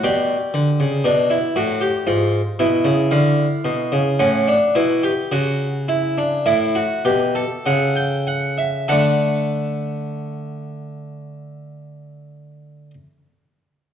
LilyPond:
<<
  \new Staff \with { instrumentName = "Harpsichord" } { \time 4/4 \key d \major \tempo 4 = 51 << { d''2. eis''4 | fis''2 e''4 fis''16 g''16 fis''16 e''16 | <a d' fis''>1 | } \\ { g'4 d'16 e'16 fis'16 g'16 eis'8 e'4. | cis'16 d'16 e'16 g'16 fis'8 e'16 d'16 e'16 fis'16 g'16 a'4~ a'16 | a'1 | } >> }
  \new Staff \with { instrumentName = "Harpsichord" } { \clef bass \time 4/4 \key d \major b,8 d16 cis16 b,8 a,8 gis,8 b,16 cis16 d8 b,16 cis16 | a,8 b,8 cis4 a,8 b,8 cis4 | d1 | }
>>